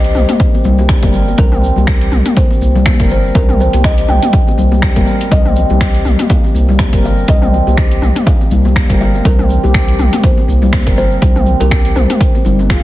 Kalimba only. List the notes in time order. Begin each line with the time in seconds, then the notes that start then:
Already playing: D#5
0.17 C5
1.38 A#4
2.38 C5
3.12 C5
3.36 A#4
3.61 C5
3.85 D#5
4.10 G5
5.32 D#5
6.31 F5
7.05 F5
7.30 D#5
8.27 F5
9.01 F5
9.26 A#4
10.25 C5
10.98 C5
11.60 A#4
11.96 C5
12.71 G#4